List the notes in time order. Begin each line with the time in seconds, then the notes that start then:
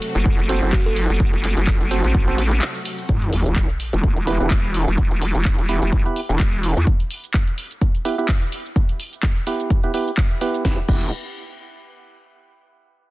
Already playing: C3 F#3 A3 F#4
0.02 open hi-hat, ride
0.15 F#1, closed hi-hat, shaker
0.26 kick, closed hi-hat, shaker
0.39 closed hi-hat, shaker
0.49 C4 F#4 A4 C5, open hi-hat, ride
0.62 F#1 C4 F#4 A4 C5, shaker
0.73 F#4, kick, clap, closed hi-hat, shaker
0.86 A4, closed hi-hat, shaker
0.96 open hi-hat, ride
1.10 F#1, shaker
1.20 kick, closed hi-hat, shaker
1.33 F#1, closed hi-hat, shaker
1.43 clap, open hi-hat, ride
1.57 F#1, closed hi-hat, shaker
1.67 kick, clap, closed hi-hat, shaker
1.80 F#1, closed hi-hat, shaker
1.91 C4 F#4 A4 C5, open hi-hat, ride
2.04 A1, closed hi-hat, shaker
2.15 A1, kick, closed hi-hat, shaker
2.28 C4 F#4 A4 C5, closed hi-hat, shaker
2.38 open hi-hat, ride
2.51 closed hi-hat, shaker
2.62 clap, closed hi-hat, shaker
2.75 closed hi-hat, shaker
2.85 open hi-hat, ride
2.99 closed hi-hat, shaker
3.09 E1, kick, closed hi-hat, sub drop, shaker
3.22 closed hi-hat, shaker
3.33 F#1, open hi-hat
3.46 E1, closed hi-hat, shaker
3.56 kick, clap, closed hi-hat, shaker
3.69 closed hi-hat, shaker
3.80 open hi-hat
3.93 E1, closed hi-hat, shaker
4.04 kick, closed hi-hat, shaker
4.17 closed hi-hat, shaker
4.27 B3 E4 G4 B4, open hi-hat
4.40 E1 B3 E4 G4 B4, shaker
4.51 kick, clap, closed hi-hat, shaker
4.64 closed hi-hat, shaker
4.74 open hi-hat
4.87 E1, shaker
4.98 kick, closed hi-hat, shaker
5.11 E1, closed hi-hat, shaker
5.22 open hi-hat
5.35 E1, closed hi-hat, shaker
5.45 kick, clap, closed hi-hat, shaker
5.58 E1, closed hi-hat, shaker
5.69 B3 E4 G4 B4, open hi-hat
5.82 E1, closed hi-hat, shaker
5.93 kick, closed hi-hat, shaker
6.06 B3 E4 G4 B4, closed hi-hat, shaker
6.16 open hi-hat
6.29 E1, shaker
6.40 kick, clap, closed hi-hat, shaker
6.53 closed hi-hat, shaker
6.63 open hi-hat
6.77 E2, shaker
6.87 kick, closed hi-hat, shaker
7.00 closed hi-hat, shaker
7.11 open hi-hat
7.24 closed hi-hat, shaker
7.34 kick, clap, closed hi-hat, shaker
7.47 closed hi-hat, shaker
7.58 open hi-hat
7.71 closed hi-hat, shaker
7.81 kick, closed hi-hat, shaker
7.95 closed hi-hat, shaker
8.05 B3 E4 G4 B4, open hi-hat
8.18 B3 E4 G4 B4, shaker
8.28 kick, clap, closed hi-hat, shaker
8.42 closed hi-hat, shaker
8.52 open hi-hat
8.66 shaker
8.76 kick, closed hi-hat, shaker
8.89 closed hi-hat, shaker
9.00 open hi-hat
9.13 closed hi-hat, shaker
9.23 kick, clap, closed hi-hat, shaker
9.36 closed hi-hat, shaker
9.47 B3 E4 G4 B4, open hi-hat
9.60 closed hi-hat, shaker
9.70 kick, closed hi-hat, shaker
9.83 B3 E4 G4 B4, closed hi-hat, shaker
9.94 B3 E4 G4 B4, open hi-hat
10.08 shaker
10.17 kick, clap, closed hi-hat, shaker
10.31 closed hi-hat, shaker
10.41 B3 E4 G4 B4, open hi-hat
10.54 closed hi-hat, shaker
10.65 E1 B3 E4 G4 B4, kick, snare
10.88 E1 B3 E4 G4 B4, kick, crash